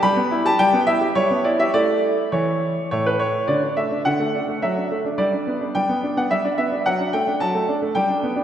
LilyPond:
<<
  \new Staff \with { instrumentName = "Grand piano" } { \time 3/4 \key d \major \tempo 4 = 106 b''8. a''16 g''8 e''8 cis''8 d''16 e''16 | d''4 cis''4 cis''16 b'16 cis''8 | d''8 e''8 fis''4 e''4 | d''4 g''8. fis''16 e''16 d''16 e''8 |
fis''8 g''8 a''4 g''4 | }
  \new Staff \with { instrumentName = "Grand piano" } { \time 3/4 \key d \major g16 b16 e'16 g'16 g16 b16 e'16 g'16 g16 b16 e'16 g'16 | <a e'>4 e4 a,4 | d16 d'16 a16 d'16 d16 a16 d'16 a16 fis16 d'16 a16 d'16 | g16 d'16 b16 d'16 g16 b16 d'16 b16 g16 d'16 b16 d'16 |
fis16 d'16 a16 d'16 fis16 a16 d'16 a16 g16 d'16 b16 d'16 | }
>>